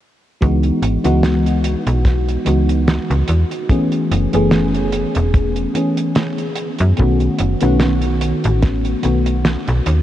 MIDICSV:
0, 0, Header, 1, 4, 480
1, 0, Start_track
1, 0, Key_signature, 4, "minor"
1, 0, Tempo, 821918
1, 241, Time_signature, 4, 2, 24, 8
1, 5855, End_track
2, 0, Start_track
2, 0, Title_t, "FM electric piano"
2, 0, Program_c, 0, 5
2, 237, Note_on_c, 0, 52, 81
2, 238, Note_on_c, 0, 56, 72
2, 240, Note_on_c, 0, 59, 70
2, 243, Note_on_c, 0, 63, 73
2, 244, Note_on_c, 0, 66, 86
2, 358, Control_c, 0, 64, 127
2, 579, Note_off_c, 0, 52, 0
2, 579, Note_off_c, 0, 56, 0
2, 580, Note_off_c, 0, 59, 0
2, 582, Note_off_c, 0, 63, 0
2, 582, Note_off_c, 0, 66, 0
2, 608, Note_on_c, 0, 52, 98
2, 610, Note_on_c, 0, 56, 87
2, 612, Note_on_c, 0, 59, 89
2, 614, Note_on_c, 0, 63, 86
2, 616, Note_on_c, 0, 66, 103
2, 742, Note_off_c, 0, 52, 0
2, 742, Note_off_c, 0, 56, 0
2, 743, Note_off_c, 0, 59, 0
2, 744, Note_off_c, 0, 63, 0
2, 745, Note_off_c, 0, 66, 0
2, 1431, Note_on_c, 0, 52, 69
2, 1437, Note_on_c, 0, 56, 63
2, 1440, Note_on_c, 0, 59, 64
2, 1445, Note_on_c, 0, 63, 65
2, 1449, Note_on_c, 0, 66, 76
2, 2130, Note_off_c, 0, 52, 0
2, 2133, Note_off_c, 0, 56, 0
2, 2135, Note_off_c, 0, 59, 0
2, 2137, Note_off_c, 0, 63, 0
2, 2139, Note_off_c, 0, 66, 0
2, 2157, Note_on_c, 0, 52, 79
2, 2159, Note_on_c, 0, 57, 71
2, 2161, Note_on_c, 0, 59, 73
2, 2162, Note_on_c, 0, 61, 70
2, 2164, Note_on_c, 0, 68, 87
2, 2169, Control_c, 0, 64, 0
2, 2261, Control_c, 0, 64, 127
2, 2499, Note_off_c, 0, 52, 0
2, 2500, Note_off_c, 0, 57, 0
2, 2501, Note_off_c, 0, 59, 0
2, 2502, Note_off_c, 0, 61, 0
2, 2502, Note_off_c, 0, 68, 0
2, 2529, Note_on_c, 0, 52, 97
2, 2532, Note_on_c, 0, 57, 89
2, 2535, Note_on_c, 0, 59, 92
2, 2535, Note_on_c, 0, 61, 88
2, 2538, Note_on_c, 0, 68, 104
2, 2662, Note_off_c, 0, 52, 0
2, 2664, Note_off_c, 0, 57, 0
2, 2665, Note_off_c, 0, 59, 0
2, 2665, Note_off_c, 0, 61, 0
2, 2667, Note_off_c, 0, 68, 0
2, 3353, Note_on_c, 0, 52, 71
2, 3358, Note_on_c, 0, 57, 66
2, 3362, Note_on_c, 0, 59, 64
2, 3367, Note_on_c, 0, 61, 64
2, 3370, Note_on_c, 0, 68, 77
2, 4051, Note_off_c, 0, 52, 0
2, 4054, Note_off_c, 0, 57, 0
2, 4056, Note_off_c, 0, 59, 0
2, 4058, Note_off_c, 0, 61, 0
2, 4060, Note_off_c, 0, 68, 0
2, 4075, Note_on_c, 0, 51, 79
2, 4078, Note_on_c, 0, 57, 72
2, 4079, Note_on_c, 0, 59, 74
2, 4083, Note_on_c, 0, 61, 75
2, 4084, Note_on_c, 0, 66, 87
2, 4089, Control_c, 0, 64, 0
2, 4206, Control_c, 0, 64, 127
2, 4418, Note_off_c, 0, 51, 0
2, 4419, Note_off_c, 0, 57, 0
2, 4420, Note_off_c, 0, 59, 0
2, 4422, Note_off_c, 0, 61, 0
2, 4422, Note_off_c, 0, 66, 0
2, 4447, Note_on_c, 0, 51, 97
2, 4450, Note_on_c, 0, 57, 88
2, 4450, Note_on_c, 0, 59, 88
2, 4452, Note_on_c, 0, 61, 87
2, 4455, Note_on_c, 0, 66, 105
2, 4581, Note_off_c, 0, 51, 0
2, 4582, Note_off_c, 0, 57, 0
2, 4583, Note_off_c, 0, 59, 0
2, 4583, Note_off_c, 0, 61, 0
2, 4585, Note_off_c, 0, 66, 0
2, 5270, Note_on_c, 0, 51, 67
2, 5274, Note_on_c, 0, 57, 64
2, 5279, Note_on_c, 0, 59, 67
2, 5283, Note_on_c, 0, 61, 65
2, 5287, Note_on_c, 0, 66, 77
2, 5855, Note_off_c, 0, 51, 0
2, 5855, Note_off_c, 0, 57, 0
2, 5855, Note_off_c, 0, 59, 0
2, 5855, Note_off_c, 0, 61, 0
2, 5855, Note_off_c, 0, 66, 0
2, 5855, End_track
3, 0, Start_track
3, 0, Title_t, "FM bass"
3, 0, Program_c, 1, 39
3, 245, Note_on_c, 1, 37, 102
3, 416, Note_off_c, 1, 37, 0
3, 480, Note_on_c, 1, 32, 81
3, 571, Note_off_c, 1, 32, 0
3, 613, Note_on_c, 1, 37, 89
3, 1028, Note_off_c, 1, 37, 0
3, 1092, Note_on_c, 1, 35, 98
3, 1387, Note_off_c, 1, 35, 0
3, 1443, Note_on_c, 1, 37, 75
3, 1748, Note_off_c, 1, 37, 0
3, 1813, Note_on_c, 1, 37, 99
3, 1888, Note_off_c, 1, 37, 0
3, 1922, Note_on_c, 1, 40, 90
3, 2012, Note_off_c, 1, 40, 0
3, 2402, Note_on_c, 1, 30, 85
3, 2492, Note_off_c, 1, 30, 0
3, 2533, Note_on_c, 1, 30, 84
3, 2948, Note_off_c, 1, 30, 0
3, 3013, Note_on_c, 1, 28, 98
3, 3308, Note_off_c, 1, 28, 0
3, 3974, Note_on_c, 1, 42, 102
3, 4048, Note_off_c, 1, 42, 0
3, 4087, Note_on_c, 1, 35, 103
3, 4257, Note_off_c, 1, 35, 0
3, 4322, Note_on_c, 1, 30, 81
3, 4412, Note_off_c, 1, 30, 0
3, 4453, Note_on_c, 1, 35, 87
3, 4868, Note_off_c, 1, 35, 0
3, 4935, Note_on_c, 1, 33, 98
3, 5229, Note_off_c, 1, 33, 0
3, 5283, Note_on_c, 1, 35, 74
3, 5588, Note_off_c, 1, 35, 0
3, 5655, Note_on_c, 1, 35, 98
3, 5729, Note_off_c, 1, 35, 0
3, 5761, Note_on_c, 1, 39, 93
3, 5852, Note_off_c, 1, 39, 0
3, 5855, End_track
4, 0, Start_track
4, 0, Title_t, "Drums"
4, 243, Note_on_c, 9, 42, 59
4, 245, Note_on_c, 9, 36, 100
4, 302, Note_off_c, 9, 42, 0
4, 303, Note_off_c, 9, 36, 0
4, 368, Note_on_c, 9, 42, 42
4, 427, Note_off_c, 9, 42, 0
4, 482, Note_on_c, 9, 42, 91
4, 540, Note_off_c, 9, 42, 0
4, 611, Note_on_c, 9, 42, 67
4, 669, Note_off_c, 9, 42, 0
4, 721, Note_on_c, 9, 38, 105
4, 724, Note_on_c, 9, 42, 64
4, 779, Note_off_c, 9, 38, 0
4, 783, Note_off_c, 9, 42, 0
4, 856, Note_on_c, 9, 42, 44
4, 914, Note_off_c, 9, 42, 0
4, 960, Note_on_c, 9, 42, 102
4, 1018, Note_off_c, 9, 42, 0
4, 1092, Note_on_c, 9, 42, 67
4, 1150, Note_off_c, 9, 42, 0
4, 1198, Note_on_c, 9, 36, 111
4, 1199, Note_on_c, 9, 38, 51
4, 1201, Note_on_c, 9, 42, 62
4, 1256, Note_off_c, 9, 36, 0
4, 1257, Note_off_c, 9, 38, 0
4, 1259, Note_off_c, 9, 42, 0
4, 1335, Note_on_c, 9, 42, 49
4, 1394, Note_off_c, 9, 42, 0
4, 1437, Note_on_c, 9, 42, 99
4, 1496, Note_off_c, 9, 42, 0
4, 1573, Note_on_c, 9, 42, 62
4, 1631, Note_off_c, 9, 42, 0
4, 1681, Note_on_c, 9, 42, 57
4, 1682, Note_on_c, 9, 38, 112
4, 1739, Note_off_c, 9, 42, 0
4, 1741, Note_off_c, 9, 38, 0
4, 1815, Note_on_c, 9, 42, 42
4, 1874, Note_off_c, 9, 42, 0
4, 1914, Note_on_c, 9, 42, 93
4, 1973, Note_off_c, 9, 42, 0
4, 2052, Note_on_c, 9, 42, 59
4, 2110, Note_off_c, 9, 42, 0
4, 2157, Note_on_c, 9, 36, 107
4, 2159, Note_on_c, 9, 42, 73
4, 2216, Note_off_c, 9, 36, 0
4, 2217, Note_off_c, 9, 42, 0
4, 2287, Note_on_c, 9, 42, 41
4, 2346, Note_off_c, 9, 42, 0
4, 2403, Note_on_c, 9, 42, 92
4, 2461, Note_off_c, 9, 42, 0
4, 2528, Note_on_c, 9, 42, 59
4, 2587, Note_off_c, 9, 42, 0
4, 2634, Note_on_c, 9, 38, 114
4, 2637, Note_on_c, 9, 42, 66
4, 2692, Note_off_c, 9, 38, 0
4, 2695, Note_off_c, 9, 42, 0
4, 2769, Note_on_c, 9, 42, 40
4, 2828, Note_off_c, 9, 42, 0
4, 2875, Note_on_c, 9, 42, 97
4, 2933, Note_off_c, 9, 42, 0
4, 3006, Note_on_c, 9, 42, 67
4, 3065, Note_off_c, 9, 42, 0
4, 3118, Note_on_c, 9, 36, 123
4, 3118, Note_on_c, 9, 42, 61
4, 3176, Note_off_c, 9, 42, 0
4, 3177, Note_off_c, 9, 36, 0
4, 3246, Note_on_c, 9, 42, 43
4, 3305, Note_off_c, 9, 42, 0
4, 3358, Note_on_c, 9, 42, 91
4, 3416, Note_off_c, 9, 42, 0
4, 3488, Note_on_c, 9, 42, 67
4, 3546, Note_off_c, 9, 42, 0
4, 3593, Note_on_c, 9, 42, 67
4, 3597, Note_on_c, 9, 38, 108
4, 3651, Note_off_c, 9, 42, 0
4, 3656, Note_off_c, 9, 38, 0
4, 3728, Note_on_c, 9, 42, 44
4, 3786, Note_off_c, 9, 42, 0
4, 3829, Note_on_c, 9, 42, 93
4, 3887, Note_off_c, 9, 42, 0
4, 3963, Note_on_c, 9, 42, 63
4, 4022, Note_off_c, 9, 42, 0
4, 4071, Note_on_c, 9, 42, 71
4, 4086, Note_on_c, 9, 36, 108
4, 4129, Note_off_c, 9, 42, 0
4, 4145, Note_off_c, 9, 36, 0
4, 4207, Note_on_c, 9, 42, 41
4, 4265, Note_off_c, 9, 42, 0
4, 4314, Note_on_c, 9, 42, 104
4, 4373, Note_off_c, 9, 42, 0
4, 4443, Note_on_c, 9, 42, 66
4, 4501, Note_off_c, 9, 42, 0
4, 4554, Note_on_c, 9, 38, 104
4, 4557, Note_on_c, 9, 42, 61
4, 4613, Note_off_c, 9, 38, 0
4, 4616, Note_off_c, 9, 42, 0
4, 4682, Note_on_c, 9, 42, 48
4, 4741, Note_off_c, 9, 42, 0
4, 4796, Note_on_c, 9, 42, 95
4, 4854, Note_off_c, 9, 42, 0
4, 4929, Note_on_c, 9, 42, 62
4, 4987, Note_off_c, 9, 42, 0
4, 5037, Note_on_c, 9, 38, 68
4, 5037, Note_on_c, 9, 42, 64
4, 5042, Note_on_c, 9, 36, 127
4, 5095, Note_off_c, 9, 42, 0
4, 5096, Note_off_c, 9, 38, 0
4, 5101, Note_off_c, 9, 36, 0
4, 5167, Note_on_c, 9, 42, 42
4, 5226, Note_off_c, 9, 42, 0
4, 5275, Note_on_c, 9, 42, 90
4, 5333, Note_off_c, 9, 42, 0
4, 5408, Note_on_c, 9, 42, 70
4, 5467, Note_off_c, 9, 42, 0
4, 5518, Note_on_c, 9, 38, 119
4, 5522, Note_on_c, 9, 42, 64
4, 5577, Note_off_c, 9, 38, 0
4, 5580, Note_off_c, 9, 42, 0
4, 5650, Note_on_c, 9, 42, 42
4, 5709, Note_off_c, 9, 42, 0
4, 5759, Note_on_c, 9, 42, 93
4, 5817, Note_off_c, 9, 42, 0
4, 5855, End_track
0, 0, End_of_file